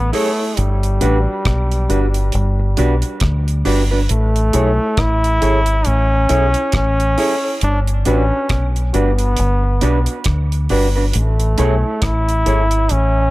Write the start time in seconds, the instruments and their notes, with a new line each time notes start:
Already playing: fingered electric bass A1
0.13 trombone A3, clean electric guitar E4 G#4 C#5, synth stab E4 G#4 A4 C#5, open hi-hat
0.39 synth stab A4 C#5
0.57 fingered electric bass G1, trombone G3, closed hi-hat
0.83 closed hi-hat
1.01 fingered electric bass A1, clean electric guitar D4 F#4 B4, synth stab F#4 G4 B4 D5, closed hi-hat
1.45 fingered electric bass B1, kick, cross-stick, closed hi-hat
1.71 closed hi-hat
1.89 fingered electric bass G1, clean electric guitar D4 F#4 B4, synth stab F#4 G4 B4 D5, closed hi-hat
2.14 closed hi-hat
2.32 fingered electric bass G1, closed hi-hat
2.60 muted clean electric guitar stroke
2.77 fingered electric bass B1, clean electric guitar D4 F#4 B4, synth stab F#4 G4 B4 D5, closed hi-hat
3.02 closed hi-hat
3.20 fingered electric bass D2, kick, cross-stick, closed hi-hat
3.48 closed hi-hat
3.65 fingered electric bass G1, clean electric guitar D4 F#4 B4, synth stab F#4 G4 B4 D5, open hi-hat
3.91 clean electric guitar D4 F#4 B4, synth stab B4 D5
4.09 fingered electric bass A1, trombone A3, closed hi-hat
4.36 closed hi-hat
4.53 fingered electric bass B1, synth stab E4 G#4 A4 C#5, clean electric guitar E4 G#4 C#5, closed hi-hat
4.97 fingered electric bass A1, trombone E4, kick, cross-stick, closed hi-hat
5.24 closed hi-hat
5.41 fingered electric bass G#1, synth stab E4 G#4 A4 C#5, clean electric guitar E4 G#4 C#5, closed hi-hat
5.66 closed hi-hat
5.85 fingered electric bass A1, trombone C#4, closed hi-hat
6.29 fingered electric bass B1, synth stab E4 G#4 A4 C#5, clean electric guitar E4 G#4 C#5, closed hi-hat
6.54 closed hi-hat
6.72 fingered electric bass A1, trombone C#4, kick, cross-stick, closed hi-hat
7.00 closed hi-hat
7.18 synth stab E4 G#4 A4 C#5, clean electric guitar E4 G#4 C#5, open hi-hat
7.44 synth stab A4 C#5
7.61 fingered electric bass G1, trombone D4, closed hi-hat
7.87 closed hi-hat
8.05 fingered electric bass A1, trombone C#4, clean electric guitar D4 F#4 B4, synth stab F#4 G4 B4 D5, closed hi-hat
8.49 fingered electric bass B1, kick, cross-stick, closed hi-hat
8.76 closed hi-hat
8.93 fingered electric bass G1, trombone B3, clean electric guitar D4 F#4 B4, synth stab F#4 G4 B4 D5, closed hi-hat
9.19 closed hi-hat
9.37 fingered electric bass G1, closed hi-hat
9.64 muted clean electric guitar stroke
9.81 fingered electric bass B1, clean electric guitar D4 F#4 B4, synth stab F#4 G4 B4 D5, closed hi-hat
10.06 closed hi-hat
10.24 fingered electric bass D2, kick, cross-stick, closed hi-hat
10.52 closed hi-hat
10.69 fingered electric bass G1, clean electric guitar D4 F#4 B4, synth stab F#4 G4 B4 D5, open hi-hat
10.96 clean electric guitar D4 F#4 B4, synth stab B4 D5
11.13 fingered electric bass A1, trombone A3, closed hi-hat
11.40 closed hi-hat
11.58 fingered electric bass B1, synth stab E4 G#4 A4 C#5, clean electric guitar E4 G#4 C#5, closed hi-hat
12.02 fingered electric bass A1, trombone E4, kick, cross-stick, closed hi-hat
12.29 closed hi-hat
12.46 fingered electric bass G#1, synth stab E4 G#4 A4 C#5, clean electric guitar E4 G#4 C#5, closed hi-hat
12.71 closed hi-hat
12.89 fingered electric bass A1, trombone C#4, closed hi-hat